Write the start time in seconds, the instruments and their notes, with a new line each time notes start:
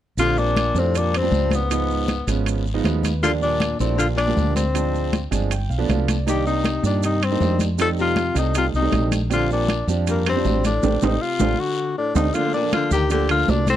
0.17 fretless electric bass A#1, baritone saxophone D3, grand piano F3 G3 C4 D4, tenor saxophone F4, high conga, high timbale, long guiro, maracas
0.37 baritone saxophone A#2, tenor saxophone D4, high conga, maracas
0.56 high conga, high timbale, short guiro, maracas
0.74 fretless electric bass F2, grand piano F3 G3 C4 D4, high conga, short guiro, maracas
0.79 baritone saxophone A2, tenor saxophone C4
0.94 baritone saxophone A#2, tenor saxophone D4, high conga, high timbale, long guiro, maracas
1.13 baritone saxophone G2, high conga, high timbale, maracas
1.17 tenor saxophone C4
1.22 grand piano F3 G3 C4 D4
1.31 fretless electric bass C#2, high conga, short guiro, maracas
1.51 high conga, high timbale, short guiro, maracas
1.55 baritone saxophone G#2, tenor saxophone B3
1.70 grand piano F3 G#3 B3 D#4, high conga, high timbale, long guiro, maracas
1.89 high conga, maracas
2.08 high conga, high timbale, short guiro, maracas
2.27 fretless electric bass G#1, grand piano F3 G#3 B3 C#4, high conga, high timbale, short guiro, maracas
2.46 high conga, high timbale, long guiro, maracas
2.65 high conga, maracas
2.74 grand piano F3 G#3 B3 D#4
2.84 fretless electric bass D#2, grand piano B4, high conga, high timbale, low timbale, short guiro, maracas
3.03 high conga, high timbale, short guiro, maracas
3.22 baritone saxophone D3, grand piano F3 G3 A#3 D4, tenor saxophone F4, high conga, high timbale, long guiro, maracas
3.41 baritone saxophone A#2, tenor saxophone D4, high conga, maracas
3.60 high conga, high timbale, short guiro, maracas
3.79 fretless electric bass A#1, baritone saxophone A2, grand piano F3 G3 A#3 D4, tenor saxophone C4, high conga, short guiro, maracas
3.98 baritone saxophone D3, tenor saxophone F4, high conga, high timbale, long guiro, maracas
4.16 baritone saxophone A#2, tenor saxophone D4, high conga, high timbale, maracas
4.27 grand piano F3 G3 A#3 D4
4.37 fretless electric bass D2, high conga, short guiro, maracas
4.55 baritone saxophone G#2, tenor saxophone C4, high conga, high timbale, short guiro, maracas
4.74 grand piano F3 G#3 C4 D4, high timbale, long guiro, maracas
4.94 high conga, maracas
5.13 high conga, high timbale, short guiro, maracas
5.31 fretless electric bass G1, grand piano F3 G#3 C4 D4 G#5, high conga, high timbale, short guiro, maracas
5.51 grand piano G5, high conga, high timbale, long guiro, maracas
5.70 fretless electric bass B1, grand piano F5, high conga, maracas
5.78 grand piano F3 A3 B3 D4
5.89 fretless electric bass C2, grand piano F5, high conga, high timbale, low timbale, short guiro, maracas
6.08 grand piano D5, high conga, high timbale, short guiro, maracas
6.26 baritone saxophone D#3, grand piano G3 A#3 D4 D#4, tenor saxophone G4, high conga, high timbale, long guiro, maracas
6.46 baritone saxophone C3, tenor saxophone D#4, high conga, maracas
6.65 high conga, high timbale, short guiro, maracas
6.83 fretless electric bass G2, baritone saxophone A#2, grand piano G3 A#3 D4 D#4, tenor saxophone D4, high conga, short guiro, maracas
7.03 baritone saxophone C3, tenor saxophone D#4, high conga, high timbale, long guiro, maracas
7.22 baritone saxophone G2, tenor saxophone C4, high conga, high timbale, maracas
7.31 grand piano G3 A#3 D4 D#4
7.40 fretless electric bass F2, high conga, low timbale, short guiro, maracas
7.59 high conga, high timbale, short guiro, maracas
7.77 baritone saxophone F3, grand piano G3 A3 C4 D#4, tenor saxophone A4, high conga, high timbale, long guiro, maracas
7.97 baritone saxophone C3, high conga, maracas
8.01 tenor saxophone F4
8.16 high conga, high timbale, short guiro, maracas
8.34 fretless electric bass C2, baritone saxophone C3, grand piano G3 A3 C4 D#4, high conga, high timbale, short guiro, maracas
8.39 tenor saxophone D#4
8.54 baritone saxophone C3, tenor saxophone F4, high conga, high timbale, long guiro, maracas
8.73 fretless electric bass C2, baritone saxophone C3, tenor saxophone D#4, high conga, maracas
8.82 grand piano G3 A3 C4 D#4
8.92 fretless electric bass A#1, high conga, high timbale, low timbale, short guiro, maracas
9.12 high conga, high timbale, short guiro, maracas
9.30 baritone saxophone D3, grand piano F3 G3 C4 D4, tenor saxophone F4, high conga, high timbale, long guiro, maracas
9.50 baritone saxophone A#2, tenor saxophone D4, high conga, maracas
9.69 high conga, high timbale, short guiro, maracas
9.87 fretless electric bass F2, grand piano F3 G3 C4 D4, high conga, short guiro, maracas
10.07 baritone saxophone G2, tenor saxophone A#3, high conga, high timbale, long guiro, maracas
10.25 baritone saxophone G2, tenor saxophone C4, high conga, high timbale, maracas
10.36 grand piano F3 G3 C4 D4
10.44 fretless electric bass A1, high conga, low timbale, short guiro, maracas
10.64 baritone saxophone A2, tenor saxophone D4, high conga, high timbale, short guiro, maracas
10.83 fretless electric bass A1, grand piano G3 A3 C4, high conga, high timbale, long guiro, maracas
11.02 fretless electric bass A1, baritone saxophone C3, grand piano G3 A3 C4, tenor saxophone D#4, high conga, high timbale, long guiro, maracas
11.20 baritone saxophone C3, tenor saxophone F4
11.40 fretless electric bass A1, grand piano G3 A3 C4, high conga, high timbale, long guiro, maracas
11.59 baritone saxophone D3, tenor saxophone F#4
11.98 baritone saxophone A2, tenor saxophone D4
12.15 fretless electric bass D2, baritone saxophone C3, grand piano A3 C4 D4, tenor saxophone D#4, high conga, high timbale, long guiro, maracas
12.34 baritone saxophone D3, grand piano F3 A3 A#3 D4, tenor saxophone F4, high conga, high timbale, long guiro, maracas
12.44 grand piano F3 A3 A#3
12.53 baritone saxophone A#2, tenor saxophone D4, high conga, maracas
12.63 grand piano F3 A3 A#3 D4
12.72 baritone saxophone D3, tenor saxophone F4, high conga, high timbale, low timbale, short guiro, maracas
12.91 fretless electric bass D2, baritone saxophone D#3, tenor saxophone G4, high conga, short guiro, maracas
13.10 baritone saxophone D3, grand piano F3 A3 A#3 D4, tenor saxophone G4, high conga, high timbale, long guiro, maracas
13.29 baritone saxophone D3, tenor saxophone F4, high conga, high timbale, maracas
13.48 fretless electric bass C2, baritone saxophone A#2, tenor saxophone D4, high conga, low timbale, short guiro, maracas
13.67 baritone saxophone A2, tenor saxophone C4, high conga, high timbale, short guiro, maracas